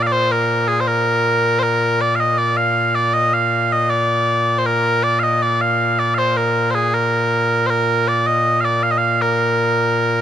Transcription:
Already playing: A#2
0.02 F5
0.07 D5
0.12 C5
0.32 A#4
0.68 G#4
0.80 C5
0.87 A#4
1.59 A#4 C5
2.01 D5
2.15 F5
2.20 D#5
2.38 D5
2.57 F5
2.95 D5
3.14 D#5
3.33 F5
3.72 D#5
3.90 D5
4.58 C5
4.66 A#4
5.03 D5
5.19 D#5 F5
5.42 D5
5.61 F5
5.99 D5
6.14 C5 F5
6.37 A#4
6.71 C5
6.75 G#4
6.94 A#4
7.66 A#4 C5
8.08 D5
8.27 D#5
8.60 F5
8.65 D5
8.83 F5
8.91 D#5
8.98 F5
9.22 A#4

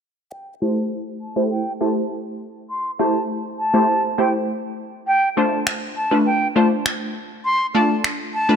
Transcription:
0.32 G5
0.62 A3 E4 G4 C5 A5
1.21 A5
1.36 A3 E4 G4 C5
1.51 G5
1.81 A3 E4 G4 C5 A5
2.70 C6
2.99 A3 E4 G4 C5 A5
3.59 A5
3.74 A3 E4 G4 C5
4.18 A3 E4 G4 C5 G5
5.08 G5
5.37 A3 D4 F4 C5 A5
5.67 finger snap
5.97 A5
6.11 A3 D4 F4 B4
6.26 G5
6.56 A3 D4 F4 C5 A5
6.86 finger snap
7.45 C6
7.74 A3 D4 F4 D5 A5
8.04 finger snap
8.34 A5
8.49 A3 D4 F4 B4

